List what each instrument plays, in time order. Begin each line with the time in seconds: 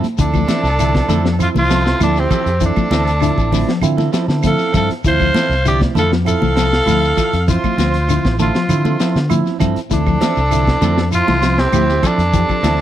0.03 muted fingered electric bass stroke, closed hi-hat, high conga, shekere
0.18 fingered electric bass D2, clean electric guitar D3, reed electric piano F3 C4 E4, tenor saxophone D4, erhu A4, kick, closed hi-hat, shekere
0.34 clean electric guitar F3, kick, high conga, claves, shekere
0.47 clean electric guitar E3 F3 C4 E4 A4, snare, closed hi-hat, high conga, shekere
0.63 fingered electric bass C2, snare, shekere
0.79 clean electric guitar D3, reed electric piano F3 C4 E4, closed hi-hat, claves, shekere
0.95 kick, snare, shekere
1.08 fingered electric bass F2, clean electric guitar D3 F3 C4 E4 A4, closed hi-hat, high conga, low conga, shekere
1.24 clean electric guitar F3, snare, shekere
1.39 reed electric piano F3 C4 E4, tenor saxophone F4, erhu C5, closed hi-hat, low conga, claves, shekere
1.54 fingered electric bass C2, clean electric guitar E3, erhu C5, high conga, shekere
1.59 tenor saxophone F4
1.69 clean electric guitar F3 C4 E4 A4, snare, closed hi-hat, shekere
1.84 clean electric guitar C4 E4 A4, snare, shekere
1.99 fingered electric bass D2, reed electric piano F3 C4 E4, clean electric guitar F3, tenor saxophone D4, erhu A4, closed hi-hat, high conga, claves, shekere
2.16 tenor saxophone C4, erhu G4, snare, shekere
2.29 clean electric guitar F3 C4 E4 A4, kick, closed hi-hat, low conga, claves, shekere
2.46 fingered electric bass F2, closed hi-hat, shekere
2.61 clean electric guitar E3, reed electric piano F3 C4 E4, erhu A4, kick, closed hi-hat, shekere
2.65 tenor saxophone D4
2.76 clean electric guitar F3, muted fingered electric bass stroke, kick, high conga, claves, shekere
2.91 fingered electric bass D2, clean electric guitar E3 C4 E4 A4, snare, closed hi-hat, high conga, shekere
3.07 closed hi-hat, shekere
3.20 clean electric guitar D3, reed electric piano F3 C4 E4, closed hi-hat, claves, shekere
3.38 fingered electric bass A1, kick, shekere
3.52 clean electric guitar D3 F3 C4 E4, open hi-hat, high conga, low conga, shekere
3.68 clean electric guitar F3, snare, shekere
3.82 fingered electric bass D3, reed electric piano F3 C4 E4, closed hi-hat, low conga, claves, shekere
3.97 clean electric guitar E3 C4 E4 A4, snare, high conga, shekere
4.12 clean electric guitar F3 C4 E4 A4, snare, closed hi-hat, shekere
4.28 fingered electric bass D3, clean electric guitar C4 E4 A4, snare, shekere
4.43 reed electric piano F3 C4 E4, clean electric guitar F3, tenor saxophone A4, kick, closed hi-hat, high conga, claves, shekere
4.47 erhu F5
4.59 snare, shekere
4.73 fingered electric bass G2, clean electric guitar F3 C4 E4 A4, erhu F5, kick, closed hi-hat, low conga, claves, shekere
4.77 tenor saxophone A4
4.90 muted fingered electric bass stroke, snare, closed hi-hat, shekere
5.04 fingered electric bass D2, clean electric guitar E3, reed electric piano F3 C4 E4, tenor saxophone C5, erhu F5, kick, closed hi-hat, shekere
5.20 clean electric guitar F3, kick, claves, shekere
5.34 clean electric guitar E3 F3 C4 E4 A4, snare, closed hi-hat, high conga, shekere
5.49 fingered electric bass C2, snare, shekere
5.65 clean electric guitar D3, reed electric piano F3 C4 E4, tenor saxophone G4, erhu D5, closed hi-hat, claves, shekere
5.81 kick, snare, high conga, shekere
5.94 fingered electric bass F2, clean electric guitar D3 F3 C4 E4 A4, closed hi-hat, high conga, low conga, shekere
5.98 tenor saxophone A4, erhu F5
6.12 clean electric guitar F3, snare, shekere
6.25 reed electric piano F3 C4 E4, tenor saxophone A4, erhu F5, closed hi-hat, claves, shekere
6.40 fingered electric bass C2, clean electric guitar E3 C4 E4 A4, high conga, shekere
6.54 clean electric guitar F3 C4 E4 A4, muted clean electric guitar stroke, snare, closed hi-hat, shekere
6.71 clean electric guitar E4, muted clean electric guitar stroke, snare, shekere
6.86 fingered electric bass D2, reed electric piano F3 C4 E4, clean electric guitar F3, closed hi-hat, high conga, claves, shekere
7.04 shekere
7.16 clean electric guitar F3 E4 A4, muted clean electric guitar stroke, kick, closed hi-hat, low conga, claves, shekere
7.33 fingered electric bass F2, closed hi-hat, shekere
7.47 clean electric guitar E3, reed electric piano F3 C4 E4, tenor saxophone F4, erhu C5, kick, closed hi-hat, shekere
7.64 clean electric guitar F3, muted fingered electric bass stroke, kick, high conga, claves, shekere
7.77 fingered electric bass D2, clean electric guitar F3 C4, muted clean electric guitar stroke, snare, closed hi-hat, high conga, shekere
7.94 closed hi-hat, shekere
8.08 clean electric guitar D3, reed electric piano F3 C4 E4, closed hi-hat, claves, shekere
8.24 fingered electric bass A1, kick, snare, shekere
8.38 clean electric guitar D3 F3 E4 A4, tenor saxophone F4, erhu C5, closed hi-hat, high conga, low conga, shekere
8.55 clean electric guitar F3, snare, shekere
8.69 fingered electric bass D3, reed electric piano F3 C4 E4, closed hi-hat, low conga, claves, shekere
8.85 clean electric guitar E3 C4 E4 A4, high conga, shekere
9.00 clean electric guitar F3 C4 E4 A4, snare, closed hi-hat, shekere
9.16 fingered electric bass D3, snare, shekere
9.29 reed electric piano F3 C4 E4, clean electric guitar F3, closed hi-hat, high conga, claves, shekere
9.46 snare, shekere
9.59 fingered electric bass G2, clean electric guitar F3 C4 E4 A4, kick, closed hi-hat, low conga, claves, shekere
9.76 muted fingered electric bass stroke, closed hi-hat, shekere
9.90 fingered electric bass D2, clean electric guitar E3, reed electric piano F3 C4 E4, tenor saxophone D4, erhu A4, kick, closed hi-hat, shekere
10.07 clean electric guitar F3, kick, claves, shekere
10.20 clean electric guitar E3 F3 C4 E4 A4, snare, closed hi-hat, high conga, shekere
10.37 fingered electric bass C2, shekere
10.51 clean electric guitar D3, reed electric piano F3 C4 E4, closed hi-hat, claves, shekere
10.67 kick, snare, shekere
10.81 fingered electric bass F2, clean electric guitar D3 F3 C4 E4 A4, closed hi-hat, high conga, low conga, shekere
10.97 clean electric guitar F3, snare, shekere
11.11 reed electric piano F3 C4 E4, tenor saxophone F4, erhu C5, closed hi-hat, claves, shekere
11.27 fingered electric bass C2, clean electric guitar E3 C4 E4 A4, snare, high conga, shekere
11.41 clean electric guitar F3 C4 E4, muted clean electric guitar stroke, snare, closed hi-hat, shekere
11.57 clean electric guitar C4 E4 A4, tenor saxophone C4, erhu G4, snare, shekere
11.72 fingered electric bass D2, clean electric guitar F3, reed electric piano F3 C4 E4, closed hi-hat, high conga, claves, shekere
11.89 snare, shekere
12.02 clean electric guitar F3 C4 E4 A4, erhu A4, kick, closed hi-hat, low conga, claves, shekere
12.06 tenor saxophone D4
12.18 fingered electric bass F2, snare, closed hi-hat, shekere
12.33 clean electric guitar E3, reed electric piano F3 C4 G4, kick, closed hi-hat, shekere
12.49 clean electric guitar F3, muted fingered electric bass stroke, kick, claves, shekere
12.63 fingered electric bass D2, clean electric guitar E3 F3 C4 E4 A4, snare, closed hi-hat, high conga, shekere